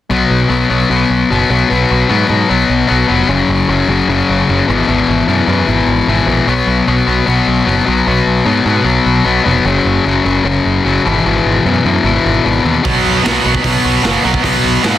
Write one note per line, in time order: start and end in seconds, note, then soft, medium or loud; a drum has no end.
0.10 0.23 B1 loud
0.10 0.49 B2 medium
0.10 0.49 F#3 medium
0.10 0.49 B3 loud
0.30 0.43 B1 medium
0.49 0.63 B1 medium
0.49 0.69 B2 medium
0.49 0.69 F#3 medium
0.49 0.70 B3 medium
0.69 0.83 B1 medium
0.69 0.89 B2 medium
0.69 0.90 F#3 medium
0.69 0.89 B3 medium
0.90 1.03 B1 medium
0.90 1.30 B2 medium
0.90 1.30 F#3 medium
0.90 1.30 B3 medium
1.10 1.23 B1 medium
1.31 1.43 F#1 medium
1.31 1.49 B2 medium
1.31 1.50 F#3 loud
1.31 1.50 B3 medium
1.50 1.63 B1 medium
1.50 1.68 B2 medium
1.50 1.69 F#3 medium
1.50 1.69 B3 medium
1.69 1.84 B1 loud
1.69 2.08 B2 medium
1.69 2.09 F#3 loud
1.69 2.09 B3 medium
1.91 2.03 B1 medium
2.09 2.23 G#2 medium
2.09 2.27 B2 medium
2.09 2.27 F#3 medium
2.09 2.27 B3 medium
2.28 2.42 G#2 medium
2.28 2.48 B2 medium
2.28 2.48 F#3 medium
2.28 2.48 B3 medium
2.49 2.63 B1 medium
2.49 2.87 B2 medium
2.49 2.86 F#3 medium
2.49 2.87 B3 medium
2.70 2.82 B1 medium
2.88 3.03 B1 medium
2.88 3.06 B2 medium
2.88 3.07 F#3 loud
2.88 3.07 B3 medium
3.08 3.22 F1 medium
3.08 3.27 B2 medium
3.08 3.27 F#3 medium
3.08 3.27 B3 medium
3.28 3.41 F#1 medium
3.28 3.68 F#2 medium
3.28 3.68 C#3 medium
3.28 3.69 F#3 medium
3.49 3.62 F#1 medium
3.68 3.81 F#1 medium
3.68 3.88 F#2 medium
3.68 3.88 C#3 medium
3.68 3.89 F#3 loud
3.88 4.01 F#1 medium
3.88 4.08 F#2 medium
3.88 4.08 C#3 medium
3.88 4.08 F#3 medium
4.08 4.21 F#1 medium
4.08 4.47 F#2 medium
4.08 4.47 C#3 medium
4.08 4.48 F#3 medium
4.29 4.42 F#1 medium
4.48 4.62 F#1 medium
4.48 4.67 F#2 medium
4.48 4.67 C#3 medium
4.48 4.67 F#3 medium
4.67 4.82 G#1 medium
4.67 4.87 E2 medium
4.67 4.86 B2 medium
4.67 4.87 E3 loud
4.88 5.01 G#1 medium
4.88 5.27 E2 medium
4.88 5.27 B2 loud
4.88 5.27 E3 medium
5.08 5.21 G#1 medium
5.28 5.47 E2 medium
5.28 5.41 F#2 medium
5.28 5.47 B2 medium
5.28 5.48 E3 medium
5.47 5.67 E2 medium
5.47 5.60 F#2 medium
5.47 5.67 B2 medium
5.47 5.68 E3 medium
5.68 5.81 G#1 medium
5.68 6.07 E2 medium
5.68 6.07 B2 loud
5.68 6.07 E3 medium
5.87 6.00 G#1 medium
6.07 6.20 G#1 medium
6.07 6.26 E2 medium
6.07 6.26 B2 medium
6.07 6.27 E3 medium
6.27 6.40 A#1 medium
6.27 6.46 E2 medium
6.27 6.46 B2 medium
6.27 6.47 E3 medium
6.47 6.60 B1 medium
6.47 6.87 B2 medium
6.47 6.87 F#3 loud
6.47 6.87 B3 loud
6.67 6.80 B1 medium
6.87 7.01 B1 medium
6.87 7.07 B2 medium
6.87 7.07 F#3 medium
6.87 7.08 B3 medium
7.07 7.20 B1 medium
7.07 7.25 B2 medium
7.07 7.26 F#3 medium
7.07 7.26 B3 medium
7.26 7.40 B1 medium
7.26 7.64 B2 medium
7.26 7.65 F#3 medium
7.26 7.65 B3 medium
7.47 7.60 B1 medium
7.65 7.80 F#1 medium
7.65 7.84 B2 medium
7.65 7.86 F#3 medium
7.65 7.85 B3 medium
7.86 8.00 B1 medium
7.86 8.06 B2 medium
7.86 8.06 F#3 medium
7.86 8.06 B3 medium
8.07 8.20 B1 medium
8.07 8.44 B2 medium
8.07 8.45 F#3 medium
8.07 8.45 B3 loud
8.27 8.40 B1 medium
8.45 8.59 G#2 medium
8.45 8.63 B2 medium
8.45 8.65 F#3 medium
8.45 8.65 B3 medium
8.65 8.79 G#2 medium
8.65 8.84 B2 medium
8.65 8.84 F#3 medium
8.65 8.84 B3 medium
8.84 8.98 B1 medium
8.84 9.23 B2 medium
8.84 9.24 F#3 loud
8.84 9.24 B3 medium
9.06 9.19 B1 medium
9.25 9.39 B1 medium
9.25 9.43 B2 medium
9.25 9.44 F#3 medium
9.25 9.44 B3 medium
9.44 9.59 F1 medium
9.44 9.64 B2 medium
9.44 9.64 F#3 medium
9.44 9.65 B3 medium
9.65 9.78 F#1 loud
9.65 10.04 F#2 loud
9.65 10.05 C#3 loud
9.65 10.05 F#3 medium
9.85 9.98 F#1 medium
10.05 10.19 F#1 medium
10.05 10.23 F#2 medium
10.05 10.23 C#3 medium
10.05 10.24 F#3 medium
10.24 10.38 F#1 medium
10.24 10.43 F#2 medium
10.24 10.44 C#3 medium
10.24 10.44 F#3 medium
10.44 10.58 F#1 medium
10.44 10.83 F#2 medium
10.44 10.84 C#3 medium
10.44 10.84 F#3 medium
10.65 10.78 F#1 medium
10.85 10.98 F#1 medium
10.85 11.04 F#2 medium
10.85 11.04 C#3 medium
10.85 11.04 F#3 loud
11.04 11.19 G#1 medium
11.04 11.25 E2 medium
11.04 11.24 B2 medium
11.04 11.25 E3 medium
11.25 11.38 G#1 loud
11.25 11.64 E2 loud
11.25 11.65 B2 medium
11.25 11.65 E3 loud
11.45 11.58 G#1 medium
11.66 11.83 E2 medium
11.66 11.78 F#2 medium
11.66 11.84 B2 medium
11.66 11.84 E3 medium
11.84 12.04 E2 medium
11.84 11.97 F#2 medium
11.84 12.04 B2 medium
11.84 12.04 E3 medium
12.04 12.17 G#1 medium
12.04 12.43 E2 medium
12.04 12.44 B2 loud
12.04 12.44 E3 medium
12.25 12.38 G#1 medium
12.44 12.58 G#1 medium
12.44 12.62 E2 medium
12.44 12.62 B2 medium
12.44 12.63 E3 loud
12.63 12.77 D#2 medium
12.63 12.82 E2 medium
12.63 12.82 B2 medium
12.63 12.83 E3 medium
12.83 12.98 B1 medium
12.83 13.23 B2 medium
12.83 13.24 F#3 medium
12.83 13.24 B3 medium
12.83 kick loud
12.83 open hi-hat medium
13.05 13.18 B1 medium
13.23 13.38 B1 medium
13.23 13.42 B2 medium
13.23 13.42 F#3 medium
13.23 13.43 B3 medium
13.23 snare loud
13.23 open hi-hat medium
13.42 13.58 B1 medium
13.42 13.62 B2 medium
13.42 13.63 F#3 medium
13.42 13.63 B3 medium
13.55 kick medium
13.63 13.76 B1 medium
13.63 14.01 B2 medium
13.63 14.03 F#3 medium
13.63 14.03 B3 medium
13.63 kick loud
13.63 open hi-hat medium
13.85 13.97 B1 medium
14.03 14.17 F#1 medium
14.03 14.23 B2 medium
14.03 14.24 F#3 medium
14.03 14.23 B3 loud
14.03 snare loud
14.03 open hi-hat medium
14.24 14.37 B1 medium
14.24 14.41 B2 medium
14.24 14.43 F#3 medium
14.24 14.42 B3 medium
14.34 kick medium
14.43 14.56 B1 loud
14.43 14.81 B2 medium
14.43 14.82 F#3 medium
14.43 14.82 B3 medium
14.43 kick medium
14.43 open hi-hat medium
14.64 14.76 B1 medium
14.83 14.97 G#2 loud
14.83 14.98 B2 medium
14.83 14.98 F#3 medium
14.83 14.98 B3 medium
14.83 snare loud
14.83 open hi-hat medium